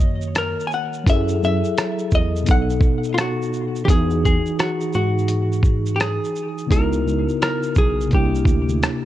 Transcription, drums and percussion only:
0.00 shaker soft
0.22 shaker medium
0.35 cross-stick loud
0.35 closed hi-hat medium
0.35 shaker medium
0.60 shaker soft
0.71 shaker soft
0.93 shaker soft
1.06 kick loud
1.06 closed hi-hat medium
1.06 shaker medium
1.28 shaker medium
1.43 shaker soft
1.64 shaker soft
1.78 cross-stick loud
1.78 closed hi-hat medium
1.78 shaker medium
1.99 shaker soft
2.11 kick medium
2.11 shaker soft
2.36 shaker medium
2.46 kick medium
2.46 closed hi-hat medium
2.46 shaker medium
2.70 shaker medium
2.81 kick loud
2.81 shaker soft
3.04 shaker soft
3.18 cross-stick loud
3.18 closed hi-hat medium
3.18 shaker medium
3.42 shaker soft
3.53 shaker soft
3.76 shaker medium
3.88 kick loud
3.88 closed hi-hat medium
3.88 shaker medium
4.10 shaker soft
4.25 kick medium
4.25 shaker soft
4.46 shaker soft
4.59 cross-stick loud
4.59 closed hi-hat medium
4.59 shaker medium
4.80 shaker soft
4.93 shaker medium
5.18 shaker medium
5.28 closed hi-hat medium
5.28 shaker medium
5.52 shaker soft
5.63 kick medium
5.63 shaker soft
5.86 shaker soft
6.00 cross-stick loud
6.00 closed hi-hat medium
6.00 shaker medium
6.24 shaker soft
6.36 shaker soft
6.58 shaker soft
6.71 kick loud
6.71 closed hi-hat medium
6.71 shaker medium
6.92 shaker soft
7.08 shaker soft
7.29 shaker soft
7.42 cross-stick loud
7.42 closed hi-hat medium
7.42 shaker medium
7.63 shaker soft
7.75 kick medium
7.75 shaker soft
8.01 shaker medium
8.11 kick medium
8.11 closed hi-hat medium
8.11 shaker medium
8.35 shaker medium
8.45 kick medium
8.45 shaker soft
8.69 shaker soft
8.83 cross-stick loud
8.83 closed hi-hat medium
8.83 shaker medium

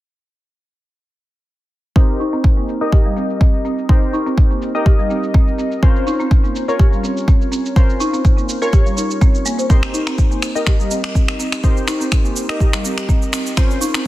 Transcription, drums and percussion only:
1.96 kick loud
2.09 shaker soft
2.20 shaker medium
2.33 shaker soft
2.44 kick loud
2.58 shaker soft
2.69 shaker medium
2.82 shaker soft
2.92 kick loud
3.06 shaker soft
3.17 shaker medium
3.30 shaker soft
3.41 kick loud
3.41 shaker soft
3.54 shaker soft
3.65 shaker medium
3.78 shaker soft
3.89 kick loud
4.03 shaker soft
4.14 shaker medium
4.27 shaker soft
4.38 kick loud
4.38 shaker medium
4.51 shaker soft
4.62 shaker medium
4.75 shaker soft
4.86 kick loud
4.86 shaker soft
4.99 shaker soft
5.10 shaker medium
5.23 shaker soft
5.34 kick loud
5.34 shaker soft
5.48 shaker soft
5.59 shaker medium
5.72 shaker soft
5.83 kick loud
5.83 shaker soft
5.96 shaker soft
6.07 shaker medium
6.20 shaker soft
6.31 kick loud
6.31 shaker medium
6.44 shaker soft
6.56 shaker medium
6.69 shaker soft
6.79 kick loud
6.79 shaker medium
6.93 shaker soft
7.04 shaker medium
7.17 shaker soft
7.28 kick loud
7.28 shaker soft
7.41 shaker soft
7.52 shaker medium
7.66 shaker soft
7.76 kick loud
7.76 shaker soft
7.90 shaker soft
8.01 shaker medium
8.14 shaker soft
8.25 kick loud
8.25 shaker soft
8.38 shaker soft
8.49 shaker medium
8.62 shaker soft
8.73 kick loud
8.73 shaker soft
8.86 shaker soft
8.97 shaker medium
9.11 shaker soft
9.21 kick loud
9.21 shaker medium
9.35 shaker soft
9.46 shaker medium
9.59 shaker soft
9.70 kick loud
9.70 shaker soft
9.83 finger snap medium
9.83 shaker soft
9.94 shaker medium
10.07 finger snap medium
10.07 shaker soft
10.18 kick loud
10.18 shaker soft
10.32 shaker soft
10.42 finger snap medium
10.42 shaker medium
10.56 shaker soft
10.67 finger snap medium
10.67 kick loud
10.67 shaker soft
10.80 shaker soft
10.91 shaker medium
11.04 finger snap medium
11.04 shaker soft
11.15 kick loud
11.15 shaker soft
11.28 finger snap medium
11.28 shaker soft
11.40 shaker medium
11.52 finger snap medium
11.52 shaker soft
11.64 kick loud
11.64 shaker soft
11.77 shaker soft
11.88 finger snap medium
11.88 shaker medium
12.01 shaker soft
12.12 finger snap medium
12.12 kick loud
12.12 shaker soft
12.25 shaker soft
12.36 shaker medium
12.49 finger snap medium
12.49 shaker soft
12.60 kick loud
12.60 shaker soft
12.73 finger snap medium
12.73 shaker soft
12.85 shaker medium
12.98 finger snap medium
12.98 shaker soft
13.09 kick loud
13.09 shaker soft
13.22 shaker soft
13.33 finger snap medium
13.33 shaker medium
13.46 shaker soft
13.57 finger snap medium
13.57 kick loud
13.57 shaker soft
13.71 shaker soft
13.82 shaker medium
13.94 finger snap medium
13.94 shaker soft

